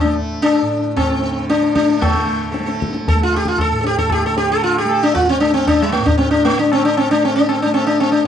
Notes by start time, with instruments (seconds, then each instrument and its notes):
Already playing: tanpura A2 D3 A3
0.01 tanpura A3, sitar D4
0.42 sitar D4 A4, tabla na
0.61 tanpura A2
0.96 sitar C4, tabla na, tabla ge
1.18 tanpura D3
1.23 sitar A4, tabla te
1.49 sitar D4 A4, tabla te
1.62 tabla te
1.75 tanpura A3, sitar D4 A4, tabla ke
1.89 tabla te
2.01 tanpura D3, sitar A3, tabla na, tabla ge
2.13 sitar A4
2.26 sitar A4
2.52 sitar A4, tabla te
2.59 tanpura A3
2.66 sitar A4, tabla te
2.80 sitar A4, tabla ke
2.93 sitar A4, tabla te
3.08 sitar A4, tabla tin, tabla ge
3.15 tanpura A3
3.23 sitar F4
3.33 sitar G4, tabla na
3.46 sitar F4, tabla ke
3.58 sitar A4, tabla na, tabla ge
3.71 tanpura A2
3.81 sitar A4, tabla te
3.86 sitar G4
3.98 sitar A4, tabla ge
4.10 sitar G4, tabla na, tabla ge
4.26 tanpura D3, sitar A4
4.37 sitar G4, tabla te
4.52 sitar A4
4.62 sitar F4, tabla na
4.78 sitar G4
4.84 tanpura A3
4.89 sitar A4, tabla na
5.03 sitar D4
5.15 sitar F4, tabla tin, tabla ge
5.29 sitar C4
5.40 tanpura A3, sitar D4, tabla na
5.54 sitar C4
5.67 sitar D4, tabla na, tabla ge
5.82 sitar G3
5.92 sitar A3, tabla te
5.99 tanpura A2
6.06 sitar D4, tabla ge
6.18 sitar C4, tabla te
6.31 sitar D4
6.45 sitar A3, tabla te
6.53 tanpura D3
6.59 sitar D4
6.72 sitar C4, tabla na
6.85 sitar D4
6.97 sitar C4, tabla na
7.11 tanpura A3, sitar D4
7.24 sitar C4, tabla tin
7.36 sitar D4
7.49 sitar C4, tabla na
7.62 tanpura A3, sitar D4
7.74 sitar C4, tabla na
7.87 sitar D4
8.00 sitar C4, tabla na
8.12 sitar D4
8.24 tanpura A2